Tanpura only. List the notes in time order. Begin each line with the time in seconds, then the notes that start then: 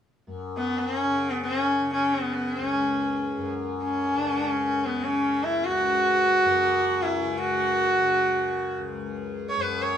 0.27 F#2
1.05 C#3
1.81 C#3
2.59 C#2
3.36 F#2
4.14 C#3
4.90 C#3
5.68 C#2
6.44 F#2
7.22 C#3
7.99 C#3
8.78 C#2
9.56 F#2